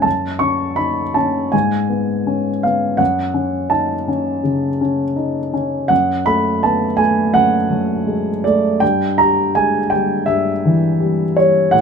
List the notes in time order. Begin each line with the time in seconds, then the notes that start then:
0.02 F#2 A5
0.39 C#4 C#6
0.76 D#4 B5
1.14 C#4 A5
1.52 G#2 G#5
1.89 B3
2.27 C#4
2.63 B3 F5
2.97 F#2 F#5
3.34 C#4
3.70 D#4 A5
4.08 C#4
4.44 C#3
4.81 C#4
5.16 D#4
5.54 C#4
5.88 F#2 F#5
6.26 A3 B5
6.63 B3 A5
6.97 A3 G#5
7.34 F#2 F#5
7.70 F#3
8.07 G#3
8.44 A3 D5
8.80 G2 G5
9.18 G3 A#5
9.55 G#3 G#5
9.90 G3 G5
10.26 G2 E5
10.65 E3
11.00 G3
11.37 G3 C#5
11.71 A2 F#5